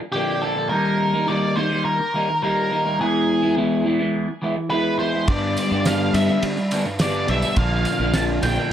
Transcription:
0.00 muted clean electric guitar stroke
0.12 clean electric guitar A#2 D3 F3 A#3 D4, lead electric guitar G4
0.41 clean electric guitar D3 F3 A#3 D4, lead electric guitar A4
0.55 clean electric guitar F3 A#3 D4
0.69 clean electric guitar D#3 G3 A#3 D#4, lead electric guitar A#4
1.13 clean electric guitar G3 A#3 D#4
1.27 clean electric guitar D#3 G3 A#3 D#4, lead electric guitar D5
1.55 clean electric guitar D#3 G3 A#3 D#4, lead electric guitar C5
1.70 clean electric guitar G3 A#3 D#4
1.85 lead electric guitar A#4
2.00 muted clean electric guitar stroke
2.14 clean electric guitar D#3 G3 A#3 D#4
2.30 muted clean electric guitar stroke
2.42 clean electric guitar D#3 G3 A#3 D#4, lead electric guitar A#4
2.71 clean electric guitar D#3 G3 A#3 D#4
2.85 clean electric guitar G3 A#3 D#4
2.99 clean electric guitar E3 G#3 B3 E4, lead electric guitar G#4
3.42 clean electric guitar G#3 B3 E4
3.56 clean electric guitar E3 G#3 B3 E4
3.85 clean electric guitar E3 G#3 B3 E4
3.99 clean electric guitar G#3 B3 E4
4.28 muted clean electric guitar stroke
4.42 clean electric guitar E3 G#3 B3 E4
4.56 muted clean electric guitar stroke
4.70 clean electric guitar E3 G#3 B3 E4, lead electric guitar B4
4.98 clean electric guitar E3 G#3 B3 E4, lead electric guitar C5
5.14 clean electric guitar G#3 B3 E4
5.27 clean electric guitar G2 D3 G3 B3 D4, fingered electric bass G2, lead electric guitar D5, kick, ride
5.57 ride, tambourine
5.71 fingered electric bass G2, clean electric guitar G3 B3 D4
5.85 clean electric guitar G2 D3 G3 B3 D4, lead electric guitar F5, snare, ride, tambourine
6.14 fingered electric bass G2, clean electric guitar D3 G3 B3 D4, lead electric guitar E5, ride, tambourine
6.28 clean electric guitar G3 B3 D4, tambourine
6.43 fingered electric bass G3, ride
6.57 muted clean electric guitar stroke, tambourine
6.71 clean electric guitar D3 G3 B3 D4, ride, tambourine
6.85 fingered electric bass G2, muted clean electric guitar stroke, tambourine
6.99 clean electric guitar G2 D3 G3 B3 D4, lead electric guitar D5, snare, ride, tambourine
7.14 tambourine
7.28 fingered electric bass B1, clean electric guitar D3 G3 B3 D4, lead electric guitar E5, ride
7.42 clean electric guitar G3 B3 D4, tambourine
7.56 fingered electric bass A#1, clean electric guitar A#2 D3 F3 A#3 D4, lead electric guitar F5, kick, ride
7.85 ride, tambourine
7.99 fingered electric bass A#1, clean electric guitar F3 A#3 D4
8.14 clean electric guitar A#2 D3 F3 A#3 D4, lead electric guitar A5, snare, ride, tambourine
8.41 fingered electric bass A#1, clean electric guitar D3 F3 A#3 D4, lead electric guitar G5, ride, tambourine
8.56 clean electric guitar F3 A#3 D4, tambourine

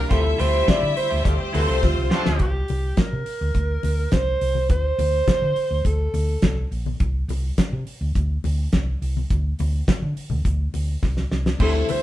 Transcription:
Already playing: tine electric piano C3 G3 A#3 D4 F4, french horn section F3, alto saxophone A#4
0.09 fingered electric bass D2, french horn section C3 G3 E5, tine electric piano D3 A3 C4 F4 G4 E5, string section E4 E5, clean electric guitar F4 G4 C5, alto saxophone A4, kick, closed hi-hat, muted conga
0.25 muted clean electric guitar stroke
0.38 fingered electric bass D2, clean electric guitar F4 G4 C5, alto saxophone C5, open hi-hat, muted conga
0.53 clean electric guitar F4 G4 C5
0.67 clean electric guitar F4 G4 C5, alto saxophone D5, muted fingered electric bass stroke, kick, snare, closed hi-hat, high conga
0.81 fingered electric bass D3, muted clean electric guitar stroke
0.96 alto saxophone C5, muted clean electric guitar stroke, open hi-hat
1.10 fingered electric bass D2, clean electric guitar F4 G4 C5
1.25 fingered electric bass D2, horn section A3 F4 A4, string section C4 C5, alto saxophone G4, muted clean electric guitar stroke, kick, closed hi-hat, muted conga
1.39 muted clean electric guitar stroke
1.53 fingered electric bass D2, clean electric guitar F4 G4 C5, alto saxophone A4, open hi-hat, muted conga
1.68 fingered electric bass C2, clean electric guitar F4 G4 C5
1.83 fingered electric bass D2, alto saxophone F4, kick, snare, high conga
1.96 fingered electric bass C2, muted clean electric guitar stroke
2.10 horn section A3 D4 F4 A4, clean electric guitar F4 G4 C5, snare
2.25 fingered electric bass D2, muted clean electric guitar stroke, snare, high conga
2.39 fingered electric bass C2, alto saxophone G4, kick, closed hi-hat, muted conga
2.68 fingered electric bass C2, open hi-hat, muted conga
2.97 alto saxophone A#4, muted fingered electric bass stroke, kick, snare, closed hi-hat, high conga
3.13 fingered electric bass C3
3.26 open hi-hat
3.41 fingered electric bass D2
3.54 fingered electric bass D2, kick, closed hi-hat, muted conga
3.83 fingered electric bass D2, open hi-hat, muted conga
4.12 fingered electric bass C2, alto saxophone C5, kick, snare, closed hi-hat, high conga
4.41 fingered electric bass C2, open hi-hat
4.55 high conga
4.69 fingered electric bass D2, alto saxophone C5, kick, closed hi-hat, muted conga
4.98 fingered electric bass D2, open hi-hat, muted conga
5.27 muted fingered electric bass stroke, kick, snare, closed hi-hat, high conga
5.42 fingered electric bass D3
5.56 open hi-hat
5.71 fingered electric bass D2
5.85 fingered electric bass D2, alto saxophone A4, kick, closed hi-hat, muted conga
6.14 fingered electric bass D2, open hi-hat, muted conga
6.42 fingered electric bass C2, kick, snare, closed hi-hat, high conga
6.71 fingered electric bass A#1, open hi-hat
6.86 high conga
7.00 fingered electric bass C2, kick, closed hi-hat, muted conga
7.28 fingered electric bass C2, open hi-hat, muted conga
7.58 muted fingered electric bass stroke, kick, snare, closed hi-hat, high conga
7.73 fingered electric bass C3
7.87 open hi-hat
8.01 fingered electric bass D2
8.15 fingered electric bass D2, kick, closed hi-hat, muted conga
8.44 fingered electric bass D2, open hi-hat, muted conga
8.72 fingered electric bass C2, kick, snare, closed hi-hat, high conga
9.02 fingered electric bass C2, open hi-hat
9.17 high conga
9.30 fingered electric bass D2, kick, closed hi-hat
9.59 fingered electric bass D2, open hi-hat, muted conga
9.88 muted fingered electric bass stroke, kick, snare, closed hi-hat, high conga
10.02 fingered electric bass D3
10.17 open hi-hat
10.30 fingered electric bass D2, low conga
10.45 fingered electric bass D2, kick, closed hi-hat, muted conga
10.74 fingered electric bass D2, open hi-hat, muted conga
11.03 fingered electric bass C2, kick, snare, high conga
11.17 snare
11.31 fingered electric bass C2, snare
11.46 snare, high conga
11.59 fingered electric bass D2, tine electric piano D3 A3 C4 E4 G4, french horn section D3 G3 C4 E4, string section C4 A4 E5, clean electric guitar E4 G4 C5, alto saxophone A4, kick, crash
11.74 muted clean electric guitar stroke
11.88 alto saxophone C5, muted clean electric guitar stroke, open hi-hat, muted conga

